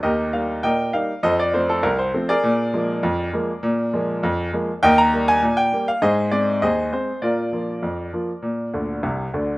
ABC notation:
X:1
M:2/4
L:1/16
Q:1/4=100
K:Eb
V:1 name="Grand piano"
[GBe]2 f2 [Beg]2 f2 | [=Ace] d c A B c2 [_ABd]- | [ABd]8- | [ABd]8 |
[Beg] b2 a2 g2 f | [Ace]2 d2 [Ace]2 c2 | [FBd]8- | [FBd]6 z2 |]
V:2 name="Grand piano" clef=bass
E,,2 [G,B,E]2 B,,2 [G,B,E]2 | F,,2 [F,=A,C]2 C,,2 [F,A,C]2 | B,,2 [F,A,B,]2 F,,2 [F,A,B,]2 | B,,2 [F,A,B,]2 F,,2 [F,A,B,]2 |
E,,2 [G,B,]2 B,,2 [G,B,]2 | A,,2 [A,C]2 E,,2 [A,C]2 | B,,2 [F,B,F]2 F,,2 [F,B,F]2 | B,,2 [D,,D,]2 [C,,C,]2 [D,,D,]2 |]